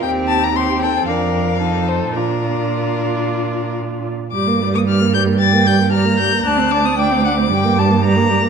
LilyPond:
<<
  \new Staff \with { instrumentName = "Violin" } { \time 4/4 \key bes \major \tempo 4 = 114 g''8 a''16 bes''16 c'''8 g''8 f''4. c''8 | bes'2. r4 | \key g \minor d'''8. ees'''16 f'''8 g'''8 a'''8 g'''8 f'''8 g'''8 | fis'''8 d'''16 ees'''16 d'''2~ d'''8 r8 | }
  \new Staff \with { instrumentName = "Violin" } { \time 4/4 \key bes \major g'4 g'8 a'8 bes'4 a'4 | f'2.~ f'8 r8 | \key g \minor r2 g''4 bes''4 | a''4 g''8 fis''8 g''8 a''8 bes''4 | }
  \new Staff \with { instrumentName = "Viola" } { \time 4/4 \key bes \major c'4 c'4 d'4 ees'4 | d'2.~ d'8 r8 | \key g \minor g16 bes16 g16 bes16 g16 bes16 g16 bes16 g16 bes16 g16 bes16 g16 bes16 g16 bes16 | d'16 c'16 d'16 c'16 d'16 c'16 d'16 c'16 g16 bes16 g16 bes16 g16 bes16 g16 bes16 | }
  \new Staff \with { instrumentName = "Cello" } { \clef bass \time 4/4 \key bes \major ees,2 f,2 | bes,2.~ bes,8 r8 | \key g \minor g,1 | d,2 g,2 | }
>>